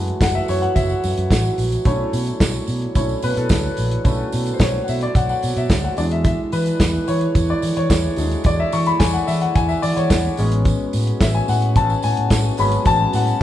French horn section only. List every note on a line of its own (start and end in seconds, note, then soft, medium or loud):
0.00 1.81 E3 medium
0.00 5.94 F#3 medium
0.00 1.84 F#4 medium
1.86 5.95 D3 medium
1.86 4.04 E4 medium
1.86 5.94 C#5 medium
4.04 5.95 F#4 medium
5.97 10.34 D3 medium
5.97 12.54 G#3 medium
5.97 10.34 E4 medium
10.38 13.43 B2 medium
10.38 13.43 C#4 medium
12.59 13.43 F#3 medium